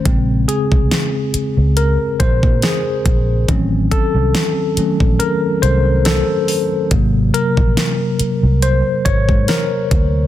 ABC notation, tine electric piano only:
X:1
M:4/4
L:1/16
Q:"Swing 16ths" 1/4=70
K:Bbm
V:1 name="Tine electric piano"
z2 A6 B2 c2 A3 z | z2 =A6 B2 c2 A3 z | z2 B6 c2 d2 B3 z |]
V:2 name="Tine electric piano" clef=bass
[D,A,C]6 z8 z2 | [E,^F,CD]6 [E,F,=A,D]2 z8 | [C,G,B,]16 |]